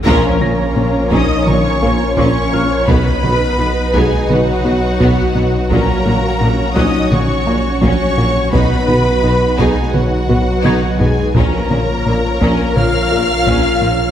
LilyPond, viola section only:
\new Staff \with { instrumentName = "Viola section" } { \time 4/4 \key bes \phrygian \tempo 4 = 85 bes'4. ees''8 des''4 des''4 | b'4. aes'8 fis'2 | bes'4. ees''8 des''4 des''4 | b'4. aes'8 fis'4. aes'8 |
bes'2 f''2 | }